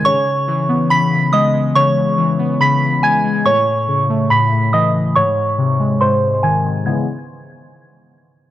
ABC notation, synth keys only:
X:1
M:4/4
L:1/8
Q:1/4=141
K:C#m
V:1 name="Synth keys" clef=bass
C, C, E, B, C, C, G, G, | C, C, E, B, C, C, G, G, | A,, A,, C, A, A,, A,, E, E, | G,, G,, ^B,, G, G,, G,, D, D, |
[C,E,G,B,] z6 z |]